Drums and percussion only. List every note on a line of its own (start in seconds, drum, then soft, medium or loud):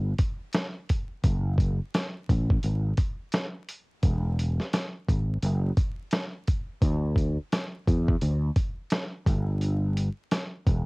0.18 kick medium
0.18 closed hi-hat medium
0.53 snare loud
0.53 closed hi-hat medium
0.89 kick medium
0.89 closed hi-hat medium
1.24 kick loud
1.24 closed hi-hat medium
1.58 kick medium
1.58 closed hi-hat medium
1.94 snare loud
1.94 closed hi-hat loud
2.29 kick medium
2.29 closed hi-hat medium
2.50 kick loud
2.63 closed hi-hat medium
2.97 kick medium
2.97 closed hi-hat medium
3.32 snare loud
3.32 closed hi-hat medium
3.68 closed hi-hat medium
4.03 kick loud
4.03 closed hi-hat medium
4.39 closed hi-hat medium
4.60 snare soft
4.73 snare loud
4.73 closed hi-hat loud
5.08 kick medium
5.08 closed hi-hat medium
5.42 closed hi-hat medium
5.77 kick loud
5.77 closed hi-hat medium
6.11 snare loud
6.11 closed hi-hat medium
6.47 kick medium
6.47 closed hi-hat medium
6.82 kick loud
6.82 closed hi-hat medium
7.16 kick medium
7.16 closed hi-hat medium
7.52 snare loud
7.52 closed hi-hat medium
7.87 kick medium
7.87 closed hi-hat medium
8.08 kick medium
8.21 closed hi-hat medium
8.56 kick medium
8.56 closed hi-hat medium
8.90 snare loud
8.90 closed hi-hat medium
9.26 kick loud
9.26 closed hi-hat medium
9.61 closed hi-hat medium
9.97 closed hi-hat medium
10.31 snare loud
10.31 closed hi-hat loud
10.67 kick medium
10.67 closed hi-hat medium